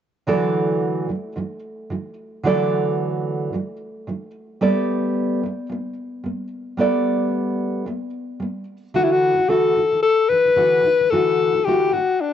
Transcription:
0.27 D3 E3 F#3 A3 A4 D5
1.09 D3 F#3
1.36 D3 E3 F#3
1.90 D3 E3 F#3
2.43 D3 E3 F#3 A3 A4 D5
3.53 D3 E3 F#3
4.07 D3 E3 F#3
4.61 G3 A3 B3 A4 D5
5.43 G3 B3
5.69 G3 B3
6.24 G3 B3
6.77 G3 A3 B3 A4 D5
7.86 G3 B3
8.40 G3 B3
8.94 D3 E3 A3 E4 F#4
9.04 E4
9.12 F#4
9.37 D3 E3
9.49 D3 E3 A3 E4 F#4 A4
9.76 D3 E3
9.92 D3 E3
10.03 A4
10.29 D3 E3 B4
10.45 D3 E3
10.56 D3 E3 A3 E4 F#4
10.84 D3 E3
11.01 D3 E3
11.10 D3 E3 A3 E4 F#4 A4
11.56 D3 E3
11.65 D3 E3 A3 E4 F#4 G4
11.93 D3 E3 F#4
12.21 D4

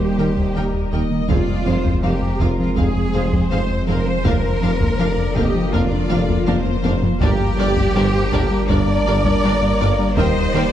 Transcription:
Already playing: D#1 G3 A#3 G4 A#4 C5 D#5
0.00 D#2 G3
0.17 D#2 D#3 A#3 D#4 A#4 G5
0.36 D#2 D#3, taiko
0.55 D#2 D#3 A#3 D#4 A#4 G5
0.73 D#2 D#4
0.91 D#2 D#3 D#4 A#4 D#5 G5
1.10 D#3 A#3
1.28 F1 F2 F3 G#3 C4 F4 G#4 C5 D5 F5, taiko
1.47 F2 F4
1.66 F1 F2 F3 C4 G#4 C5 F5
1.84 F2 F3, taiko
2.02 F1 F2 F3 G#3 C4 G4 A#4 F5
2.22 F2 F4
2.40 F1 F2 F3 C4 F4 G#4 F5, taiko
2.59 F3 C4 F4
2.76 F1 F2 F3 C4 G#4 F5, taiko
2.96 F2 G#3
3.13 F1 F2 F3 C4 G#4 C5 F5
3.32 F2 F3, taiko
3.50 F1 F2 F3 C4 G#4 C5 F5
3.69 F2 F4
3.87 F1 F2 F3 C4 G#4 A#4 F5
4.06 F3 C4 C5
4.24 F1 F2 D3 A#3 D4 A#4 F5, taiko
4.44 F2 A#4
4.61 F1 F2 F3 D4 F4 A#4 F5
4.80 F2 A#3, taiko
4.99 F1 F2 F3 D4 A#4 D5 F5
5.17 F2 A#4
5.35 F1 F2 D3 A#3 G4 A#4 D#5 F5, taiko
5.55 F3 F4
5.72 F1 F2 A#3 D4 F4 A#4 D5 F5, taiko
5.92 F2 D4
6.10 F1 F2 F3 D4 F4 A#4 F5
6.29 F2 A#3, taiko
6.46 F1 F2 F3 D4 F4 A#4 C5 F5, taiko high
6.66 F2 A#4, taiko high
6.83 F1 F2 A#3 D4 A#4 F5, taiko high
7.03 F3 F4, taiko low
7.20 G1 G2 G3 A#3 D4 G4 A#4 D5, taiko
7.40 G2 G4
7.58 G1 G2 G3 D4 A#4 D5
7.76 G2 G3, taiko
7.95 G1 G2 G3 D4 A#4 C5 D5
8.14 G2 G4
8.32 G1 G2 G3 D4 A#4 D5, taiko
8.51 G3 D4
8.68 G1 G2 G3 D4 A#4 D5, taiko
8.87 G2 A#3
9.05 G1 G2 G3 D4 A#4 D5
9.25 G2 G3, taiko
9.43 G1 G2 G3 D4 A#4 D5
9.62 G2 G4
9.80 G1 G2 G3 D4 A#4 D5
9.99 G3 D4
10.17 D#1 D#2 D#3 A#3 D#4 G4 A#4 C5 D#5 G5, taiko
10.36 D#2 D#4
10.54 D#2 D#3 A#3 D#4 A#4 D5 G5

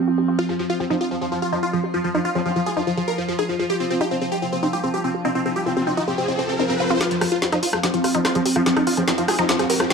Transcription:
Already playing: F3 C4
0.08 F4
0.18 G4
0.28 F4
0.39 F4
0.49 F3 G#4
0.59 F3 G4
0.70 F4
0.80 F3 G4
0.90 F3 D#4
1.01 F4
1.11 F3 G#4
1.21 F3 G4
1.32 F3 F4
1.42 F4 G4
1.52 F3 D#4
1.63 F4
1.73 F3 G#4
1.84 G4
1.94 F3 F4
2.04 F3 G4
2.15 F3 D#4
2.25 F4
2.35 F3 C4 G#4
2.46 F3 C4 G4
2.56 F3 F4
2.66 F4 G4 G#4
2.77 F3 D#4 F4
2.87 F3 F4
2.97 F3 G#4
3.08 G4 A#4
3.18 F3 F4
3.28 F3 G4
3.39 D#4 G#4
3.49 F3 F4
3.59 F3 G#4
3.70 G4, riser
3.80 C4 F4
3.90 C4 G4
4.01 D#4 G4
4.11 C4 F4
4.21 C4 G#4
4.32 G4
4.42 C4 F4
4.52 C4 G4
4.63 C4 D#4
4.73 F4 G4
4.83 C4 G#4
4.94 G4
5.04 C4 F4
5.15 G4
5.25 C4 D#4
5.35 C4 F4
5.46 C4 G#4
5.56 G4
5.66 C4 F4
5.77 C4 G4
5.87 C4 D#4
5.97 D#4 F4
6.08 C4 G#4
6.18 C4 G4
6.28 C4 F4
6.39 C4 F4
6.49 C4 F5
6.59 C4 D#4
6.70 C4 F4
6.80 C4 F5
6.90 C4 F4
7.01 F3 C4 F4, cross-stick, snare, closed hi-hat, riser
7.11 F3 G#4, closed hi-hat
7.21 F1 F3 G4, cross-stick, open hi-hat
7.32 F1 F4, closed hi-hat
7.42 F3 G4, snare, closed hi-hat
7.52 F1 F3 D#4, cross-stick, closed hi-hat
7.63 F4, open hi-hat
7.73 F1 F3 G#4, cross-stick
7.83 F3 G4, snare, closed hi-hat
7.94 F3 F4, closed hi-hat
8.04 F1 F4 G4, cross-stick, open hi-hat
8.15 F1 F3 D#4, closed hi-hat
8.25 F4, cross-stick, snare, closed hi-hat
8.35 F2 F3 G#4, closed hi-hat
8.46 G4, open hi-hat
8.56 F3 F4, cross-stick, closed hi-hat
8.66 F3 G4, snare, closed hi-hat
8.77 F3 D#4, cross-stick, closed hi-hat
8.87 G1 F4, open hi-hat
8.97 G1 F3 C4 G#4, closed hi-hat
9.08 F3 C4 G4, cross-stick, snare, closed hi-hat
9.18 F1 F3 F4, closed hi-hat
9.28 F4 G4 G#4, cross-stick, open hi-hat
9.39 F1 F3 D#4 F4, closed hi-hat
9.49 F3 F4, snare, closed hi-hat
9.59 F3 G#4, cross-stick, closed hi-hat
9.70 F1 G4 A#4, open hi-hat
9.80 F1 F3 F4, cross-stick, closed hi-hat

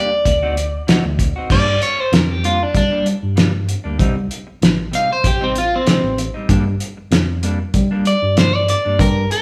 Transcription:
Already playing: G3 A#3 D4 D5
0.11 muted clean electric guitar stroke
0.25 D2, muted clean electric guitar stroke, kick, closed hi-hat
0.42 D3 C4 D#4 F#4
0.56 muted clean electric guitar stroke, closed hi-hat
0.87 D3 C4 D#4 F#4, snare, closed hi-hat
1.04 D2, muted clean electric guitar stroke
1.19 muted clean electric guitar stroke, kick, closed hi-hat
1.36 C4 D#4 F#4
1.50 G2 G3 A#3 D4 D5, kick, crash
1.68 muted clean electric guitar stroke
1.82 C#5, closed hi-hat
1.99 C5, muted clean electric guitar stroke
2.12 F2 A#4, snare, closed hi-hat
2.29 G4, muted clean electric guitar stroke
2.44 G2 G3 A#3 D4 F4, closed hi-hat
2.60 D4, muted clean electric guitar stroke
2.74 G3 D4, muted clean electric guitar stroke, kick, closed hi-hat
2.91 G2 G3 A#3 D4
3.05 muted clean electric guitar stroke, closed hi-hat
3.23 G2
3.36 G2 G3 A#3 D4, snare, closed hi-hat
3.53 muted clean electric guitar stroke
3.67 muted clean electric guitar stroke, closed hi-hat
3.84 D2 G3 A#3 D4
3.98 C2 C3 G3 C4 D#4, kick, closed hi-hat
4.16 muted clean electric guitar stroke
4.31 closed hi-hat
4.47 muted clean electric guitar stroke
4.62 A1, snare, closed hi-hat
4.78 muted clean electric guitar stroke
4.91 C3 G3 C4 D#4 F5, closed hi-hat
5.09 C5, muted clean electric guitar stroke
5.24 A1 G4, muted clean electric guitar stroke, kick, closed hi-hat
5.40 C3 G3 C4 D#4
5.55 F4, muted clean electric guitar stroke, closed hi-hat
5.76 C4
5.85 C2 C3 G3 C4 D#4, snare, closed hi-hat
6.03 A1, muted clean electric guitar stroke
6.18 muted clean electric guitar stroke, closed hi-hat
6.34 G3 C4 D#4
6.49 G2 G3 A#3 D4, kick, closed hi-hat
6.66 muted clean electric guitar stroke
6.80 closed hi-hat
6.97 muted clean electric guitar stroke
7.11 F2, snare, closed hi-hat
7.28 muted clean electric guitar stroke
7.42 G2 G3 A#3 D4, closed hi-hat
7.60 muted clean electric guitar stroke
7.74 G3, muted clean electric guitar stroke, kick, closed hi-hat
7.91 G2 G3 A#3 D4
8.05 D5, muted clean electric guitar stroke, closed hi-hat
8.22 G2
8.36 G2 G3 A#3 D4 C5, snare, closed hi-hat
8.54 D5, muted clean electric guitar stroke
8.67 D5, muted clean electric guitar stroke, closed hi-hat
8.85 G2 G3 A#3 D4
8.99 G2 A#4, kick, closed hi-hat
9.16 muted clean electric guitar stroke
9.31 A#4, closed hi-hat

